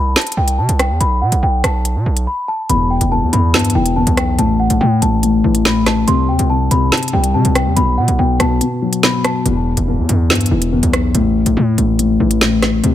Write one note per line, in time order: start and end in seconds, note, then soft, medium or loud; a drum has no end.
0.00 0.15 C2 loud
0.00 0.13 B5 medium
0.16 0.34 A5 medium
0.16 snare loud
0.16 closed hi-hat soft
0.21 closed hi-hat medium
0.27 closed hi-hat medium
0.32 closed hi-hat medium
0.37 0.60 C2 loud
0.37 0.56 G5 medium
0.48 closed hi-hat medium
0.58 0.68 C3 loud
0.58 0.77 A5 medium
0.69 0.91 C2 loud
0.69 closed hi-hat medium
0.79 0.98 G5 medium
0.79 cross-stick loud
0.79 closed hi-hat medium
0.90 1.00 E2 loud
1.00 1.23 B1 loud
1.00 1.19 B5 loud
1.00 closed hi-hat medium
1.22 1.32 B2 loud
1.22 1.40 F#5 medium
1.32 1.42 B1 loud
1.32 closed hi-hat medium
1.43 1.63 B1 loud
1.43 1.61 G5 medium
1.64 1.97 B1 loud
1.64 2.23 A5 medium
1.64 cross-stick medium
1.64 closed hi-hat medium
1.85 closed hi-hat medium
1.96 2.06 B2 loud
2.06 2.27 B1 loud
2.17 closed hi-hat medium
2.27 2.46 B5 medium
2.48 2.67 A5 medium
2.69 3.00 E1 loud
2.69 3.10 E2 medium
2.69 2.88 B5 loud
2.69 closed hi-hat medium
2.91 3.09 G5 medium
3.01 3.24 E1 loud
3.01 closed hi-hat medium
3.12 3.31 E2 medium
3.12 3.30 A5 medium
3.22 3.32 E2 loud
3.33 3.55 E2 loud
3.33 3.52 E2 medium
3.33 3.51 B5 medium
3.33 closed hi-hat medium
3.54 3.95 E2 medium
3.54 3.74 G2 medium
3.54 3.72 A5 medium
3.54 snare loud
3.54 closed hi-hat soft
3.59 closed hi-hat medium
3.65 closed hi-hat medium
3.70 closed hi-hat medium
3.75 4.06 E1 loud
3.75 4.38 E3 medium
3.75 3.93 G5 medium
3.86 closed hi-hat medium
3.96 4.38 E2 medium
3.96 4.15 A5 medium
4.07 4.37 B1 loud
4.07 closed hi-hat medium
4.17 4.36 G5 medium
4.17 cross-stick loud
4.17 closed hi-hat medium
4.38 4.69 A1 loud
4.38 4.79 A2 medium
4.38 4.57 A5 medium
4.38 closed hi-hat medium
4.60 4.78 F#5 medium
4.70 4.80 A1 loud
4.70 closed hi-hat medium
4.81 5.00 A2 medium
4.81 5.01 A2 loud
4.81 4.99 G5 medium
5.02 5.42 A1 loud
5.02 5.22 A2 medium
5.02 5.61 A5 medium
5.02 closed hi-hat medium
5.23 5.64 A2 medium
5.23 closed hi-hat medium
5.44 6.05 A1 loud
5.44 6.08 E3 medium
5.55 closed hi-hat medium
5.65 6.08 A2 medium
5.65 5.84 B5 medium
5.65 snare loud
5.65 closed hi-hat medium
5.86 6.05 A5 medium
5.86 cross-stick loud
5.86 snare medium
5.86 closed hi-hat medium
6.08 6.30 C2 loud
6.08 6.48 C3 medium
6.08 6.26 C6 loud
6.08 closed hi-hat medium
6.29 6.39 D#2 loud
6.29 6.47 G5 medium
6.39 6.70 C2 loud
6.39 closed hi-hat medium
6.50 6.70 C3 medium
6.50 6.68 A5 medium
6.71 6.91 C2 loud
6.71 6.91 C3 medium
6.71 6.89 B5 medium
6.71 closed hi-hat medium
6.92 7.33 C3 medium
6.92 7.10 A5 medium
6.92 snare loud
6.92 closed hi-hat soft
6.97 closed hi-hat medium
7.03 closed hi-hat medium
7.08 closed hi-hat medium
7.13 7.36 C2 loud
7.13 7.77 G3 medium
7.13 7.32 G5 medium
7.24 closed hi-hat medium
7.34 7.44 C3 loud
7.34 7.77 C3 medium
7.34 7.53 A5 medium
7.45 7.68 C2 loud
7.45 closed hi-hat medium
7.55 7.74 G5 medium
7.55 cross-stick loud
7.55 closed hi-hat medium
7.66 7.76 E2 loud
7.76 7.99 B1 loud
7.76 8.17 B2 medium
7.76 7.95 B5 medium
7.76 closed hi-hat medium
7.98 8.08 B2 loud
7.98 8.16 F#5 medium
8.08 8.18 B1 loud
8.08 closed hi-hat medium
8.19 8.39 B1 loud
8.19 8.38 B2 medium
8.19 8.37 G5 medium
8.40 8.61 B1 loud
8.40 8.60 B2 medium
8.40 8.99 A5 medium
8.40 cross-stick medium
8.40 closed hi-hat medium
8.61 9.02 B2 medium
8.61 closed hi-hat medium
8.82 9.46 F#3 medium
8.93 closed hi-hat medium
9.03 9.46 B2 medium
9.03 9.22 B5 medium
9.03 snare loud
9.03 closed hi-hat medium
9.24 9.43 A5 medium
9.24 cross-stick loud
9.24 closed hi-hat medium
9.46 9.76 E1 loud
9.46 9.86 E2 medium
9.46 closed hi-hat medium
9.77 10.00 E1 loud
9.77 closed hi-hat medium
9.88 10.08 E2 medium
9.98 10.08 E2 loud
10.09 10.29 E2 medium
10.09 10.32 E2 loud
10.09 closed hi-hat medium
10.30 10.71 E2 medium
10.30 10.50 G2 loud
10.30 snare loud
10.30 closed hi-hat soft
10.35 closed hi-hat medium
10.41 closed hi-hat medium
10.46 closed hi-hat medium
10.51 10.82 E1 loud
10.51 11.15 E3 medium
10.62 closed hi-hat medium
10.72 11.15 E2 medium
10.83 11.13 B1 loud
10.83 closed hi-hat medium
10.93 cross-stick loud
10.93 closed hi-hat medium
11.15 11.45 A1 loud
11.15 11.55 A2 medium
11.15 closed hi-hat medium
11.46 11.56 A1 loud
11.46 closed hi-hat medium
11.57 11.77 A2 loud
11.57 11.76 A2 medium
11.78 12.19 A1 loud
11.78 11.98 A2 medium
11.78 closed hi-hat medium
11.99 12.40 A2 medium
11.99 closed hi-hat medium
12.20 12.81 A1 loud
12.20 12.84 E3 medium
12.31 closed hi-hat medium
12.41 12.84 A2 medium
12.41 snare loud
12.41 closed hi-hat medium
12.62 cross-stick loud
12.62 snare medium
12.62 closed hi-hat medium
12.84 12.95 C2 loud
12.84 12.95 C3 medium
12.84 closed hi-hat medium